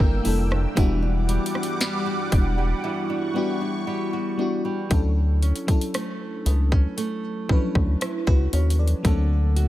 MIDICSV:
0, 0, Header, 1, 6, 480
1, 0, Start_track
1, 0, Key_signature, 2, "major"
1, 0, Tempo, 1034483
1, 357, Time_signature, 4, 2, 24, 8
1, 4492, End_track
2, 0, Start_track
2, 0, Title_t, "Analog synth pad"
2, 0, Program_c, 0, 89
2, 0, Note_on_c, 0, 58, 86
2, 0, Note_on_c, 0, 79, 78
2, 0, Note_on_c, 0, 88, 95
2, 339, Note_off_c, 0, 58, 0
2, 339, Note_off_c, 0, 79, 0
2, 339, Note_off_c, 0, 88, 0
2, 357, Note_on_c, 0, 86, 89
2, 358, Note_on_c, 0, 55, 87
2, 358, Note_on_c, 0, 78, 77
2, 1307, Note_off_c, 0, 86, 0
2, 1317, Note_on_c, 0, 85, 92
2, 2259, Note_off_c, 0, 55, 0
2, 2259, Note_off_c, 0, 78, 0
2, 2267, Note_off_c, 0, 85, 0
2, 4492, End_track
3, 0, Start_track
3, 0, Title_t, "FM electric piano"
3, 0, Program_c, 1, 5
3, 0, Control_c, 1, 64, 127
3, 0, Note_on_c, 1, 55, 89
3, 0, Note_on_c, 1, 58, 82
3, 0, Note_on_c, 1, 62, 81
3, 0, Note_on_c, 1, 64, 85
3, 0, Note_on_c, 1, 69, 102
3, 47, Note_off_c, 1, 55, 0
3, 49, Note_off_c, 1, 58, 0
3, 51, Note_off_c, 1, 62, 0
3, 53, Note_off_c, 1, 64, 0
3, 55, Note_off_c, 1, 69, 0
3, 108, Note_on_c, 1, 55, 80
3, 113, Note_on_c, 1, 58, 73
3, 117, Note_on_c, 1, 62, 79
3, 121, Note_on_c, 1, 64, 75
3, 126, Note_on_c, 1, 69, 91
3, 320, Note_off_c, 1, 55, 0
3, 322, Note_off_c, 1, 58, 0
3, 324, Note_off_c, 1, 62, 0
3, 326, Note_off_c, 1, 64, 0
3, 328, Note_off_c, 1, 69, 0
3, 349, Note_on_c, 1, 55, 91
3, 353, Note_on_c, 1, 59, 82
3, 358, Note_on_c, 1, 62, 85
3, 361, Note_on_c, 1, 64, 82
3, 363, Control_c, 1, 64, 0
3, 366, Note_on_c, 1, 66, 105
3, 440, Control_c, 1, 64, 127
3, 1181, Note_off_c, 1, 55, 0
3, 1183, Note_off_c, 1, 59, 0
3, 1185, Note_off_c, 1, 62, 0
3, 1187, Note_off_c, 1, 64, 0
3, 1189, Note_off_c, 1, 66, 0
3, 1550, Note_on_c, 1, 55, 87
3, 1554, Note_on_c, 1, 59, 85
3, 1559, Note_on_c, 1, 62, 78
3, 1563, Note_on_c, 1, 64, 78
3, 1567, Note_on_c, 1, 66, 96
3, 1967, Note_off_c, 1, 55, 0
3, 1969, Note_off_c, 1, 59, 0
3, 1972, Note_off_c, 1, 62, 0
3, 1974, Note_off_c, 1, 64, 0
3, 1976, Note_off_c, 1, 66, 0
3, 2030, Note_on_c, 1, 55, 80
3, 2035, Note_on_c, 1, 59, 73
3, 2039, Note_on_c, 1, 62, 74
3, 2043, Note_on_c, 1, 64, 74
3, 2047, Note_on_c, 1, 66, 88
3, 2240, Note_off_c, 1, 55, 0
3, 2243, Note_off_c, 1, 59, 0
3, 2245, Note_off_c, 1, 62, 0
3, 2247, Note_off_c, 1, 64, 0
3, 2249, Note_off_c, 1, 66, 0
3, 2269, Note_on_c, 1, 54, 75
3, 2273, Note_on_c, 1, 61, 72
3, 2279, Note_on_c, 1, 62, 74
3, 2282, Control_c, 1, 64, 0
3, 2282, Note_on_c, 1, 64, 72
3, 2287, Note_on_c, 1, 69, 85
3, 2363, Control_c, 1, 64, 127
3, 2584, Note_off_c, 1, 54, 0
3, 2585, Note_off_c, 1, 61, 0
3, 2588, Note_off_c, 1, 62, 0
3, 2590, Note_off_c, 1, 64, 0
3, 2592, Note_off_c, 1, 69, 0
3, 2631, Note_on_c, 1, 54, 75
3, 2634, Note_on_c, 1, 61, 69
3, 2639, Note_on_c, 1, 62, 70
3, 2644, Note_on_c, 1, 64, 69
3, 2648, Note_on_c, 1, 69, 81
3, 3358, Note_off_c, 1, 54, 0
3, 3360, Note_off_c, 1, 61, 0
3, 3362, Note_off_c, 1, 62, 0
3, 3365, Note_off_c, 1, 64, 0
3, 3367, Note_off_c, 1, 69, 0
3, 3472, Note_on_c, 1, 53, 62
3, 3477, Note_on_c, 1, 61, 74
3, 3482, Note_on_c, 1, 62, 75
3, 3485, Note_on_c, 1, 64, 70
3, 3489, Note_on_c, 1, 71, 91
3, 3502, Note_on_c, 1, 54, 76
3, 3505, Note_off_c, 1, 53, 0
3, 3723, Note_off_c, 1, 71, 0
3, 3842, Note_on_c, 1, 71, 69
3, 3845, Note_on_c, 1, 66, 57
3, 3953, Note_off_c, 1, 71, 0
3, 3955, Note_off_c, 1, 66, 0
3, 3961, Note_on_c, 1, 73, 66
3, 3964, Note_on_c, 1, 66, 54
3, 4073, Note_off_c, 1, 73, 0
3, 4074, Note_off_c, 1, 66, 0
3, 4079, Note_on_c, 1, 74, 62
3, 4081, Note_on_c, 1, 69, 52
3, 4098, Note_off_c, 1, 61, 0
3, 4100, Note_off_c, 1, 62, 0
3, 4102, Note_off_c, 1, 64, 0
3, 4110, Note_off_c, 1, 54, 0
3, 4190, Note_on_c, 1, 54, 81
3, 4194, Note_on_c, 1, 58, 77
3, 4198, Note_on_c, 1, 60, 73
3, 4202, Note_off_c, 1, 69, 0
3, 4203, Control_c, 1, 64, 0
3, 4203, Note_on_c, 1, 62, 72
3, 4208, Note_on_c, 1, 69, 85
3, 4285, Control_c, 1, 64, 127
3, 4306, Note_off_c, 1, 74, 0
3, 4492, Note_off_c, 1, 54, 0
3, 4492, Note_off_c, 1, 58, 0
3, 4492, Note_off_c, 1, 60, 0
3, 4492, Note_off_c, 1, 62, 0
3, 4492, Note_off_c, 1, 69, 0
3, 4492, End_track
4, 0, Start_track
4, 0, Title_t, "Nylon-string guitar"
4, 0, Program_c, 2, 24
4, 0, Note_on_c, 2, 55, 81
4, 0, Note_on_c, 2, 62, 66
4, 0, Note_on_c, 2, 64, 63
4, 0, Note_on_c, 2, 70, 66
4, 114, Note_off_c, 2, 64, 0
4, 116, Note_on_c, 2, 64, 64
4, 233, Note_off_c, 2, 62, 0
4, 235, Note_on_c, 2, 62, 67
4, 354, Note_on_c, 2, 52, 82
4, 404, Note_off_c, 2, 70, 0
4, 473, Note_off_c, 2, 62, 0
4, 475, Note_on_c, 2, 62, 63
4, 489, Note_off_c, 2, 64, 0
4, 594, Note_off_c, 2, 55, 0
4, 596, Note_on_c, 2, 55, 64
4, 714, Note_off_c, 2, 62, 0
4, 716, Note_on_c, 2, 62, 58
4, 831, Note_off_c, 2, 55, 0
4, 836, Note_on_c, 2, 55, 72
4, 956, Note_on_c, 2, 66, 64
4, 1074, Note_off_c, 2, 62, 0
4, 1076, Note_on_c, 2, 62, 62
4, 1191, Note_off_c, 2, 55, 0
4, 1197, Note_on_c, 2, 55, 58
4, 1311, Note_off_c, 2, 52, 0
4, 1317, Note_on_c, 2, 52, 85
4, 1435, Note_off_c, 2, 62, 0
4, 1437, Note_on_c, 2, 62, 59
4, 1552, Note_off_c, 2, 55, 0
4, 1558, Note_on_c, 2, 55, 65
4, 1675, Note_off_c, 2, 62, 0
4, 1677, Note_on_c, 2, 62, 56
4, 1791, Note_off_c, 2, 55, 0
4, 1796, Note_on_c, 2, 55, 64
4, 1915, Note_off_c, 2, 66, 0
4, 1917, Note_on_c, 2, 66, 66
4, 2034, Note_off_c, 2, 62, 0
4, 2036, Note_on_c, 2, 62, 61
4, 2151, Note_off_c, 2, 55, 0
4, 2157, Note_on_c, 2, 55, 61
4, 2325, Note_off_c, 2, 52, 0
4, 2325, Note_off_c, 2, 55, 0
4, 2514, Note_off_c, 2, 62, 0
4, 2516, Note_on_c, 2, 61, 58
4, 2757, Note_on_c, 2, 57, 58
4, 2994, Note_off_c, 2, 61, 0
4, 2995, Note_on_c, 2, 59, 61
4, 3116, Note_off_c, 2, 59, 0
4, 3116, Note_on_c, 2, 61, 48
4, 3234, Note_off_c, 2, 57, 0
4, 3236, Note_on_c, 2, 57, 60
4, 3471, Note_off_c, 2, 61, 0
4, 3477, Note_on_c, 2, 61, 59
4, 3541, Note_off_c, 2, 66, 0
4, 3716, Note_on_c, 2, 64, 62
4, 3836, Note_off_c, 2, 64, 0
4, 3836, Note_on_c, 2, 66, 55
4, 3951, Note_off_c, 2, 61, 0
4, 3957, Note_on_c, 2, 61, 61
4, 4196, Note_on_c, 2, 50, 76
4, 4244, Note_off_c, 2, 66, 0
4, 4245, Note_off_c, 2, 61, 0
4, 4437, Note_on_c, 2, 66, 61
4, 4492, Note_off_c, 2, 50, 0
4, 4492, Note_off_c, 2, 57, 0
4, 4492, Note_off_c, 2, 66, 0
4, 4492, End_track
5, 0, Start_track
5, 0, Title_t, "Analog synth bass"
5, 0, Program_c, 3, 38
5, 0, Note_on_c, 3, 31, 95
5, 93, Note_off_c, 3, 31, 0
5, 119, Note_on_c, 3, 29, 92
5, 309, Note_off_c, 3, 29, 0
5, 358, Note_on_c, 3, 28, 111
5, 643, Note_off_c, 3, 28, 0
5, 1078, Note_on_c, 3, 28, 94
5, 1268, Note_off_c, 3, 28, 0
5, 2278, Note_on_c, 3, 38, 103
5, 2563, Note_off_c, 3, 38, 0
5, 2997, Note_on_c, 3, 37, 83
5, 3187, Note_off_c, 3, 37, 0
5, 3477, Note_on_c, 3, 38, 48
5, 3525, Note_off_c, 3, 38, 0
5, 3597, Note_on_c, 3, 38, 84
5, 3692, Note_off_c, 3, 38, 0
5, 3838, Note_on_c, 3, 37, 92
5, 3933, Note_off_c, 3, 37, 0
5, 3957, Note_on_c, 3, 39, 87
5, 4148, Note_off_c, 3, 39, 0
5, 4198, Note_on_c, 3, 38, 106
5, 4483, Note_off_c, 3, 38, 0
5, 4492, End_track
6, 0, Start_track
6, 0, Title_t, "Drums"
6, 0, Note_on_c, 9, 36, 102
6, 44, Note_off_c, 9, 36, 0
6, 115, Note_on_c, 9, 46, 71
6, 162, Note_off_c, 9, 46, 0
6, 240, Note_on_c, 9, 37, 94
6, 287, Note_off_c, 9, 37, 0
6, 357, Note_on_c, 9, 36, 111
6, 358, Note_on_c, 9, 42, 71
6, 404, Note_off_c, 9, 36, 0
6, 404, Note_off_c, 9, 42, 0
6, 598, Note_on_c, 9, 42, 51
6, 644, Note_off_c, 9, 42, 0
6, 678, Note_on_c, 9, 42, 54
6, 720, Note_on_c, 9, 37, 66
6, 724, Note_off_c, 9, 42, 0
6, 757, Note_on_c, 9, 42, 54
6, 766, Note_off_c, 9, 37, 0
6, 803, Note_off_c, 9, 42, 0
6, 838, Note_on_c, 9, 42, 64
6, 840, Note_on_c, 9, 38, 107
6, 885, Note_off_c, 9, 42, 0
6, 887, Note_off_c, 9, 38, 0
6, 1077, Note_on_c, 9, 42, 70
6, 1078, Note_on_c, 9, 36, 95
6, 1123, Note_off_c, 9, 42, 0
6, 1124, Note_off_c, 9, 36, 0
6, 2277, Note_on_c, 9, 36, 106
6, 2277, Note_on_c, 9, 42, 65
6, 2323, Note_off_c, 9, 42, 0
6, 2324, Note_off_c, 9, 36, 0
6, 2517, Note_on_c, 9, 42, 37
6, 2564, Note_off_c, 9, 42, 0
6, 2578, Note_on_c, 9, 42, 45
6, 2624, Note_off_c, 9, 42, 0
6, 2636, Note_on_c, 9, 36, 83
6, 2637, Note_on_c, 9, 42, 56
6, 2683, Note_off_c, 9, 36, 0
6, 2683, Note_off_c, 9, 42, 0
6, 2698, Note_on_c, 9, 42, 64
6, 2744, Note_off_c, 9, 42, 0
6, 2758, Note_on_c, 9, 42, 58
6, 2760, Note_on_c, 9, 37, 103
6, 2804, Note_off_c, 9, 42, 0
6, 2806, Note_off_c, 9, 37, 0
6, 2998, Note_on_c, 9, 42, 66
6, 3044, Note_off_c, 9, 42, 0
6, 3118, Note_on_c, 9, 36, 88
6, 3165, Note_off_c, 9, 36, 0
6, 3238, Note_on_c, 9, 42, 68
6, 3284, Note_off_c, 9, 42, 0
6, 3477, Note_on_c, 9, 36, 85
6, 3523, Note_off_c, 9, 36, 0
6, 3597, Note_on_c, 9, 36, 90
6, 3598, Note_on_c, 9, 37, 61
6, 3644, Note_off_c, 9, 36, 0
6, 3645, Note_off_c, 9, 37, 0
6, 3718, Note_on_c, 9, 42, 68
6, 3721, Note_on_c, 9, 37, 110
6, 3764, Note_off_c, 9, 42, 0
6, 3768, Note_off_c, 9, 37, 0
6, 3839, Note_on_c, 9, 36, 92
6, 3885, Note_off_c, 9, 36, 0
6, 3958, Note_on_c, 9, 42, 63
6, 4004, Note_off_c, 9, 42, 0
6, 4038, Note_on_c, 9, 42, 55
6, 4085, Note_off_c, 9, 42, 0
6, 4118, Note_on_c, 9, 42, 39
6, 4164, Note_off_c, 9, 42, 0
6, 4198, Note_on_c, 9, 36, 101
6, 4198, Note_on_c, 9, 42, 68
6, 4244, Note_off_c, 9, 36, 0
6, 4244, Note_off_c, 9, 42, 0
6, 4438, Note_on_c, 9, 42, 38
6, 4485, Note_off_c, 9, 42, 0
6, 4492, End_track
0, 0, End_of_file